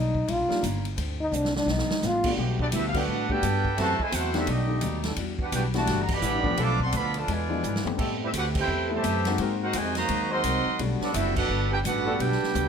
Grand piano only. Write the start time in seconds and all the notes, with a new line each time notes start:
0.49 G3 A#3 D4 D#4 F4
2.25 G3 A3 B3 D4 F#4
2.95 G3 A3 B3 D4 F#4
3.30 G3 A3 B3 D4 F#4
4.34 D#3 A3 B3 D4 G4
4.67 D#3 A3 B3 D4 G4
5.74 E3 G3 B3 D4 F#4
6.43 F3 A3 B3 D4 G4
7.49 F3 G#3 B3 D4 E4
7.84 G3 A3 B3 C4 G4
8.89 G3 A3 B3 C4 E4
9.26 G#3 A#3 C4 D#4 F#4
10.80 G3 A3 B3 D4 F#4
12.05 G3 A3 B3 D4 F#4